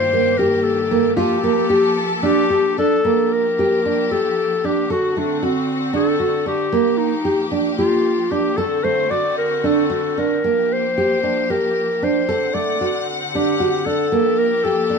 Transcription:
Already playing: G2 D#3 A#3 G4 C5
0.13 A#3
0.37 G4 A#4
0.64 A4
0.91 A#3
1.16 F3 F4 G4 A4
1.44 A#3
1.70 G4
2.23 D4 G4
2.50 G4
2.78 D4 A4
3.05 F3 A#3 G4
3.33 A#4
3.59 G4
3.85 D4
4.11 G4 A4
4.64 D4 G4
4.88 D3 C4 F#4 A4
5.17 A3 D4
5.43 C4 F#4
5.93 D4 A4
6.20 F#4
6.46 D4 G4
6.72 F3 A#3 G4
6.97 D#4
7.25 G4
7.51 D4
7.78 F4 G4
8.31 D4 G4
8.56 D3 C4 F#4 A4
8.84 A3 C5
9.11 F#4 D5
9.38 A#4
9.64 D4 A4
9.90 F#4
10.18 D4 A#4
10.43 F3 A#3 G4
10.73 C5
10.98 G4
11.23 D4
11.50 G4 A#4
12.02 D4 C5
12.29 D3 C4 A4 F#5
12.54 A3 D5
12.81 F#4
13.35 D4 G4
13.60 F#4
13.86 D4 A4
14.12 F3 A#3 G4
14.38 A#4
14.64 G4 A4
14.90 D4

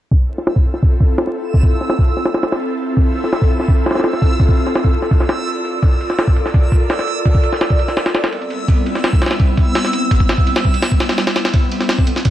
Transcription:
0.11 E6, kick, ride
0.29 ride
0.38 snare
0.47 snare, ride
0.56 kick
0.65 ride
0.74 snare
0.82 kick, ride
1.00 kick, ride
1.18 snare, ride
1.27 snare
1.36 ride
1.54 kick, ride
1.63 kick
1.72 ride
1.81 snare
1.90 snare, ride
1.99 kick
2.08 ride
2.17 snare
2.25 snare, ride
2.34 snare, ride
2.43 snare, ride
2.52 snare, ride
2.61 ride
2.70 ride
2.79 ride
2.97 kick, ride
3.15 ride
3.24 snare
3.33 snare, ride
3.42 kick
3.51 ride
3.60 snare
3.68 kick, ride
3.86 snare, ride
3.91 snare, ride
3.95 snare, ride
4.00 snare, ride
4.04 snare, ride
4.13 snare
4.22 kick, ride
4.40 kick, ride
4.49 kick
4.58 ride
4.67 snare
4.75 snare, ride
4.84 kick
4.93 ride
5.02 snare
5.11 kick, ride
5.20 snare
5.29 snare, ride
5.38 ride
5.47 ride
5.56 ride
5.65 ride
5.83 kick, ride
6.01 ride
6.10 snare
6.19 snare, ride
6.28 kick
6.36 ride
6.46 snare
6.54 kick, ride
6.72 kick, ride
6.90 snare, ride
6.99 snare
7.07 ride
7.25 kick, ride
7.35 kick
7.43 ride
7.53 snare
7.61 snare, ride
7.70 kick
7.79 ride
7.88 snare
7.97 snare, ride
8.06 snare, ride
8.15 snare, ride
8.24 snare, ride
8.32 ride
8.42 ride
8.50 ride
8.68 kick, ride
8.86 ride
8.95 snare
9.04 snare, ride
9.13 kick
9.22 snare, ride
9.26 snare, ride
9.31 snare, ride
9.39 kick, ride
9.57 kick, ride
9.75 snare, ride
9.85 snare
9.93 ride
10.11 kick, ride
10.20 kick
10.29 snare, ride
10.38 kick
10.47 ride
10.56 snare, ride
10.65 kick
10.74 ride
10.82 snare, ride
10.92 kick
11.00 snare, ride
11.09 snare, ride
11.18 snare, ride
11.27 snare, ride
11.36 snare, ride
11.45 snare, ride
11.53 E6, kick, ride
11.72 ride
11.81 snare
11.89 snare, ride
11.99 kick
12.07 ride
12.16 snare
12.25 kick, ride

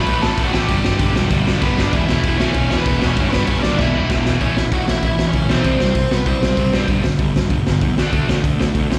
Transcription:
0.00 B4 B5
0.07 A1 A2 E3 A3, kick, open hi-hat
0.22 A2 E3 A3 A5, snare
0.26 A4
0.37 A1 A2 E3 A3, kick, open hi-hat
0.44 F#4 F#5
0.52 A1 A2 E3 A3 G5, snare
0.57 G4
0.68 G1 G2 D3 G3, kick, open hi-hat
0.84 G2 D3 G3, snare
0.99 G1 G2 D3 G3, kick, open hi-hat
1.14 E1 G2 D3 G3, snare
1.30 G1 G2 D3 G3, kick, open hi-hat
1.45 G2 D3 G3, snare
1.61 G1 G2 D3 G3 B3 B4, kick, open hi-hat
1.77 G1 G2 D3 G3 D4 D5, snare
1.92 E1 E2 B2 E3 E4 E5, kick, open hi-hat
2.07 E2 B2 E3 E4 E5, snare
2.23 E1 E2 B2 E3, kick, open hi-hat
2.38 D2 E2 B2 E3 C#4 C#5, snare
2.54 E1 E2 B2 E3, kick, open hi-hat
2.71 E2 B2 E3, snare
2.78 B3 B4
2.86 E1 E2 B2 E3, kick, open hi-hat
3.00 E1 E2 B2 E3, snare
3.06 C#4 C#5
3.17 G1 G2 D3 G3, kick, open hi-hat
3.30 G2 D3 G3 B3 B4, snare
3.45 G1 G2 D3 G3 C#4 C#5, kick, open hi-hat
3.62 D#2 G2 D3 G3 D4 D5, snare
3.78 E1 E2 B2 E3 E4 E5, kick, snare
3.95 E2 B2 E3
4.10 E1 E2 B2 E3, kick, snare
4.26 E1 E2 B2 E3, snare
4.41 A1 A2 E3 A3 C#4 C#5, kick, open hi-hat
4.57 A2 E3 E4 E5, snare
4.72 A1 A2 E3 F#4 F#5, kick, open hi-hat
4.87 A1 A2 E3 E4 E5, snare
5.03 A1 A2 E3 E4 E5, kick, open hi-hat
5.18 A1 A2 E3, snare
5.27 C#4 C#5
5.33 C#2 A2 E3, kick, open hi-hat
5.49 B1 A2 E3 A3 C4 C5, snare
5.64 C2 C3 G3 C4, kick, open hi-hat
5.79 C2 C3 G3, snare
5.95 C2 C3 G3, kick, open hi-hat
6.11 C3 G3 B3 B4, snare
6.26 C2 C3 G3 C4 C5, kick, open hi-hat
6.41 C2 C3 G3, snare
6.57 C2 C3 G3, kick, open hi-hat
6.72 G2 C3 G3 C4, snare
6.88 G1 G2 D3 G3, kick, open hi-hat
7.03 G2 D3, snare
7.19 G1 G2 D3, kick, open hi-hat
7.34 G1 G2 D3, snare
7.50 G1 G2 D3, kick, open hi-hat
7.67 G1 G2 D3, snare
7.81 E2 G2 D3, kick, open hi-hat
7.97 D2 D3 A3 D4, snare
8.13 D2 D3 A3 D4, kick, open hi-hat
8.29 D2 D3 A3, snare
8.44 D2 D3 A3, kick, open hi-hat
8.59 D3 A3, snare
8.74 D2 D3 A3, kick, open hi-hat
8.90 D2 D3 A3, snare

